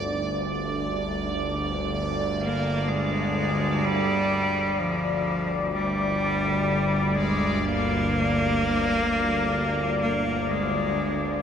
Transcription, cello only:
2.41 A#3
2.88 G#3
3.84 G3
4.78 F3
5.74 G3
7.15 G#3
7.63 A#3
10.01 A#3
10.50 G#3

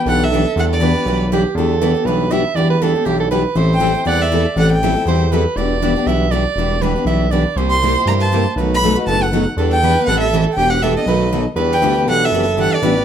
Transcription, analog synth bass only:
0.06 B1
0.56 E2
1.06 B1
1.55 E2
2.05 B1
2.55 E2
3.06 B1
3.55 A1
4.06 E2
4.56 A1
5.06 E2
5.56 E1
6.06 B1
6.56 E1
7.05 B1
7.56 C2
8.06 G2
8.56 B1
9.07 F#1
9.57 E2
10.07 A1
10.57 E1
11.06 B1
11.56 E2
11.81 D2
12.07 B1
12.31 F#1
12.56 G1
12.70 G1
12.82 A1

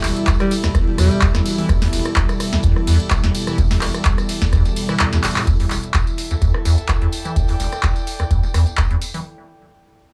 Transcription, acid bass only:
0.04 E1
0.64 E2
0.75 E2
0.87 E1
0.98 E2
1.22 E2
1.35 E2
1.58 E3
1.69 E2
1.82 E2
1.93 E1
2.53 E2
2.64 E2
2.76 E1
2.87 E2
3.11 E2
3.24 E2
3.47 E3
3.58 E2
3.71 E2
3.82 E1
4.42 E2
4.53 E2
4.65 E1
4.89 E3
5.00 E2
5.13 E2
5.24 E1
5.36 A2
5.47 E2
5.60 E2
5.71 E1
6.31 E2
6.42 E2
6.54 E1
6.65 E2
6.89 E2
7.02 E2
7.25 E3
7.36 E2
7.49 E2
7.60 E1
8.20 E2
8.31 E2
8.43 E1
8.54 E2
8.78 E2
8.91 E2
9.14 E3

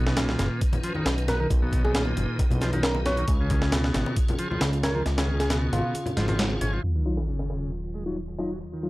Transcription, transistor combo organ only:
0.07 B2
0.17 A#2
0.84 F3
0.96 D#3
1.28 B3
1.40 D#3
1.62 B2
1.85 B2
1.95 A#2
2.62 F3
2.73 D#3
3.06 B3
3.18 D#3
3.41 C#3
3.62 C#3
3.73 B2
4.39 F3
4.50 F3
4.83 C#4
4.95 F3
5.18 C#3
5.40 C#3
5.51 B2
6.17 F3
6.29 F3
6.61 C#4
6.73 F3
6.95 D#3
7.17 D#3
7.28 C#3
7.95 G#3
8.06 F#3
8.39 D#4
8.51 F#3
8.73 D#3

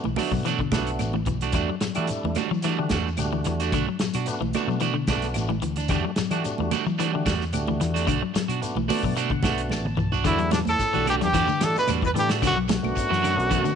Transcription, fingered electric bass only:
0.05 B1
0.31 B2
0.72 B1
1.00 A1
1.27 B1
1.54 E2
1.82 muted fingered electric bass stroke
1.97 E3
2.24 E2
2.51 E3
2.90 E2
3.18 D2
3.46 E2
3.72 B1
4.00 muted fingered electric bass stroke
4.14 B2
4.40 B1
4.67 B2
5.08 B1
5.35 A1
5.62 D2
5.89 E2
6.18 muted fingered electric bass stroke
6.31 E3
6.59 E2
6.86 E3
7.26 E2
7.53 D2
7.81 E2
8.07 B1
8.36 muted fingered electric bass stroke
8.48 B2
8.75 B1
9.04 B2
9.43 B1
9.71 A1
9.97 B1
10.25 E2
10.67 E2
10.95 B1
11.24 E2
11.63 E3
11.77 muted fingered electric bass stroke
11.89 E2
12.15 A2
12.42 B1
12.83 B1
13.11 F#2
13.37 B1

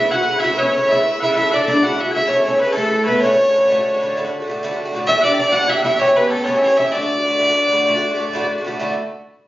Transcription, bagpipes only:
Already playing: E5
0.11 F#5 G#5
0.38 G#5
0.43 E5
0.58 C#5 F#5
0.92 E5
1.20 E5 F#5
1.32 F#5
1.37 E5
1.51 D5 F#5
1.65 D5 E5
1.84 F#5
2.11 G#5
2.16 E5
2.30 C#5
2.55 C#5 E5
2.61 B4
2.72 A4 C#5
3.04 C#5
3.08 B4
3.23 C#5
5.08 E5
5.21 F#5
5.25 D5
5.35 D5 E5
5.55 F#5
5.68 E5 G#5
5.83 F#5
5.87 E5
6.02 C#5
6.18 B4
6.27 A4 C#5
6.46 C#5
6.58 E5
6.63 C#5
6.79 E5
6.94 D5

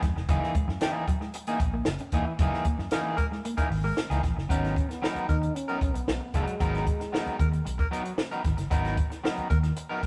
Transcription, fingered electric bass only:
0.03 F2
0.16 F1
0.29 F#1
0.55 muted fingered electric bass stroke
0.68 F#2
1.60 A#1
1.86 F#1
2.13 E1
2.39 F#1
2.65 muted fingered electric bass stroke
2.78 F#2
3.70 G#1
4.10 C#2
4.24 A#1
4.36 F#1
4.50 G#1
5.15 muted fingered electric bass stroke
5.29 D#2
5.81 B1
6.08 B1
6.34 F#1
6.60 G#1
7.26 muted fingered electric bass stroke
7.40 D#2
7.66 B1
8.45 G#1
8.58 F#1
8.71 G#1
9.38 muted fingered electric bass stroke
9.51 D#2
10.03 B1

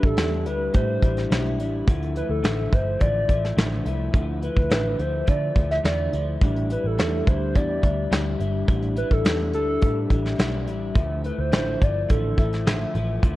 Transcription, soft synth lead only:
0.05 A4
0.46 B4
0.74 C5
2.17 B4
2.30 A4
2.73 C5
3.01 D5
4.43 B4
5.00 C5
5.29 D5
5.71 E5
5.86 D5
6.72 B4
6.86 A4
7.28 C5
7.55 D5
8.98 B4
9.12 A4
9.54 A4
11.25 B4
11.40 C5
11.82 D5
12.10 A4

